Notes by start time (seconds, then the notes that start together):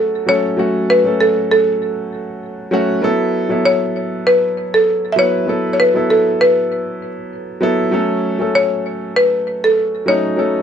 Already playing: F#3 A3 C#4 F#4 A4
0.26 F#3 A3 C#4 A4 C#5
0.57 F#3 A3 C#4 F#4
0.90 B4
1.04 F#3 A3 C#4 A4
1.21 A4
1.51 A4
2.71 F#3 A3 C#4 F#4
3.02 F#3 B3 E4 A4
3.49 F#3 B3 E4 A4
3.65 C#5
4.27 B4
4.74 A4
5.12 F#3 E5
5.17 B3 E4 B4 C#5
5.47 F#3 B3 E4 A4
5.73 C#5
5.80 B4
5.94 F#3 B3 E4 A4
6.10 A4
6.41 B4
7.61 F#3 B3 E4 A4
7.91 F#3 A3 C#4 A4
8.39 F#3 A3 C#4 A4
8.55 C#5
9.16 B4
9.64 A4
10.06 F#3 A3 C#4 D#4 C#5
10.36 F#3 A3 C#4 A4